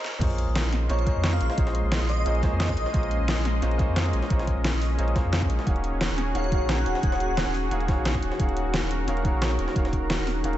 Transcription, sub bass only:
0.21 0.46 A#1 loud
0.48 0.63 A#1 loud
0.65 0.88 A#1 medium
0.90 1.14 A#1 loud
1.16 1.39 F2 loud
1.41 1.49 A#1 medium
1.58 1.82 A#1 loud
1.84 1.99 A#1 loud
2.01 2.25 A#1 medium
2.26 2.51 A#1 loud
2.52 2.76 F2 medium
2.77 2.85 A#1 medium
2.94 3.19 A#1 loud
3.20 3.35 A#1 loud
3.37 3.61 A#1 medium
3.62 3.87 A#1 loud
3.88 4.12 F2 loud
4.13 4.22 A#1 medium
4.30 4.55 A#1 loud
4.57 4.72 A#1 loud
4.74 4.97 A#1 medium
4.99 5.23 A#1 loud
5.25 5.49 F2 loud
5.50 5.58 A#1 medium
5.67 5.91 D#1 loud
5.93 6.08 D#1 medium
6.10 6.34 D#1 medium
6.35 6.60 D#1 loud
6.61 6.85 A#1 loud
6.86 6.94 D#1 medium
7.03 7.28 D#1 loud
7.29 7.45 D#1 loud
7.46 7.70 D#1 medium
7.71 7.96 D#1 loud
7.97 8.21 A#1 loud
8.22 8.31 D#1 medium
8.40 8.64 D#1 loud
8.65 8.81 D#1 loud
8.83 9.06 D#1 medium
9.08 9.32 D#1 loud
9.34 9.58 A#1 loud
9.59 9.67 D#1 medium
9.76 10.01 D#1 loud
10.02 10.17 D#1 loud
10.19 10.43 D#1 loud
10.44 10.58 D#1 loud

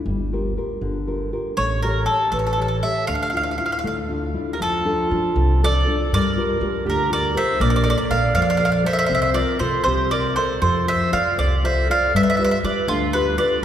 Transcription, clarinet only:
4.53 4.60 G4 soft
4.63 5.59 F4 medium
5.63 6.09 A4 medium
6.14 6.83 A#4 medium
6.86 7.09 G4 medium
7.12 7.35 A#4 medium
7.37 7.59 C5 medium
7.61 8.07 A#4 medium
8.11 8.34 D5 medium
8.35 8.81 D5 medium
8.86 9.32 C5 medium
9.37 9.59 A#4 medium
9.62 9.85 A4 medium
9.87 10.10 G4 medium
10.13 10.36 A#4 medium
10.37 10.60 A4 medium
10.63 10.86 A4 medium
10.89 11.12 C5 medium
11.13 11.36 D5 medium
11.40 11.63 A4 medium
11.65 11.88 C5 medium
11.90 12.12 D5 medium
12.15 12.51 B4 medium
12.65 12.87 B4 medium
12.89 13.12 D4 medium
13.14 13.37 G4 medium
13.38 13.61 B4 medium

